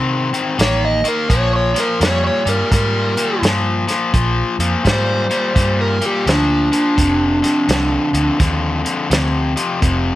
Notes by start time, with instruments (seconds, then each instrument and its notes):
Already playing: fingered electric bass C3, overdriven electric guitar D#3 C4
0.33 overdriven electric guitar D#3 C4, closed hi-hat
0.58 fingered electric bass A1, overdriven electric guitar D#3 A#3, electric slide guitar C#5, snare, closed hi-hat
0.85 electric slide guitar D#5
1.04 overdriven electric guitar D#3 A#3, closed hi-hat
1.08 electric slide guitar A#4
1.29 fingered electric bass A#1, overdriven electric guitar A#2 F3, electric slide guitar C#5, kick, closed hi-hat
1.56 electric slide guitar C#5
1.74 overdriven electric guitar A#2 F3, snare, closed hi-hat
1.80 electric slide guitar A#4
2.00 fingered electric bass F2, overdriven electric guitar A#2 G3, electric slide guitar C#5, snare, closed hi-hat
2.27 electric slide guitar C#5
2.45 fingered electric bass G2, overdriven electric guitar A#2 G3, electric slide guitar A#4, closed hi-hat
2.72 fingered electric bass G#2, overdriven electric guitar A#2 G3, electric slide guitar A#4, kick, closed hi-hat
3.17 overdriven electric guitar A#2 G3, closed hi-hat
3.42 fingered electric bass G2, overdriven electric guitar A#2 F3, snare, closed hi-hat
3.87 overdriven electric guitar A#2 F3, snare, closed hi-hat
4.14 fingered electric bass A#1, overdriven electric guitar A#2 F3, kick, closed hi-hat
4.59 fingered electric bass F2, overdriven electric guitar A#2 F3, closed hi-hat
4.84 fingered electric bass G#2, overdriven electric guitar A#2 G3, electric slide guitar C5, kick, snare, closed hi-hat
5.30 overdriven electric guitar A#2 G3, closed hi-hat
5.55 fingered electric bass G2, overdriven electric guitar A#2 G3, kick, snare, closed hi-hat
5.81 electric slide guitar A#4
6.01 overdriven electric guitar A#2 G3, closed hi-hat
6.06 electric slide guitar G4
6.26 fingered electric bass D2, overdriven electric guitar A#2 F3, electric slide guitar D4, snare, closed hi-hat
6.72 overdriven electric guitar A#2 F3, closed hi-hat
6.96 fingered electric bass F1, overdriven electric guitar F2 C3, kick, closed hi-hat
7.42 overdriven electric guitar F2 C3, snare, closed hi-hat
7.68 fingered electric bass C2, overdriven electric guitar F2 D3, snare, closed hi-hat
8.13 fingered electric bass D2, overdriven electric guitar F2 D3, closed hi-hat
8.39 fingered electric bass D#2, overdriven electric guitar F2 D3, kick, snare, closed hi-hat
8.84 overdriven electric guitar F2 D3, closed hi-hat
9.10 fingered electric bass D2, overdriven electric guitar F2 C3, snare, closed hi-hat
9.56 overdriven electric guitar F2 C3, closed hi-hat
9.82 fingered electric bass F1, overdriven electric guitar F2 C3, kick, closed hi-hat